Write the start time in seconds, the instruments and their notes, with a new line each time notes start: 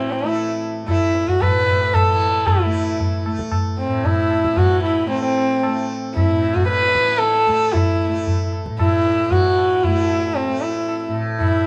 Already playing: tanpura A2 E3 A3, sarangi C4
0.09 sarangi E4, tabla na
0.23 tanpura A3
0.35 tabla na
0.84 tanpura A3
0.88 sarangi E4, tabla na, tabla ge
1.15 tabla te
1.27 sarangi F#4, tabla ge
1.41 tanpura A2, sarangi B4, tabla na, tabla ge
1.68 tabla ge
1.94 sarangi A4, tabla na, tabla ge
2.06 tanpura E3
2.20 tabla te
2.47 sarangi E4, tabla na, tabla ge
2.65 tanpura A3
3.00 tabla tin, tabla ge
3.26 tanpura A3, tabla na
3.39 tabla ke
3.52 tabla na, tabla ge
3.79 sarangi C4
3.85 tanpura A2
4.04 sarangi E4, tabla tin, tabla ge
4.31 tabla na
4.45 tanpura E3, tabla ke
4.57 sarangi F#4, tabla tin, tabla ge
4.83 sarangi E4, tabla na
5.06 tanpura A3, sarangi C4, tabla tin
5.22 sarangi C4
5.38 tabla na
5.63 tanpura A3, tabla na
6.15 sarangi E4, tabla na, tabla ge
6.27 tanpura A2
6.43 tabla te
6.54 sarangi F#4, tabla ge
6.68 sarangi B4, tabla te
6.82 tabla te
6.87 tanpura E3
6.95 tabla ke
7.08 tabla te
7.19 sarangi A4, tabla te
7.35 tabla te
7.47 tanpura A3, tabla ke
7.61 tabla te
7.73 sarangi E4, tabla na, tabla ge
8.07 tanpura A3
8.27 tabla tin, tabla ge
8.53 tabla na
8.66 tanpura A2, tabla ke
8.79 sarangi E4, tabla na, tabla ge
9.06 tabla te
9.27 tanpura E3
9.31 sarangi F#4, tabla tin, tabla ge
9.58 tabla na
9.83 tanpura A3, sarangi E4, tabla tin, tabla ge
10.09 tabla na
10.35 sarangi C4, tabla tin
10.47 tanpura A3
10.61 sarangi E4
10.89 tabla na
11.08 tanpura A2
11.14 tabla na
11.40 sarangi E4, tabla na, tabla ge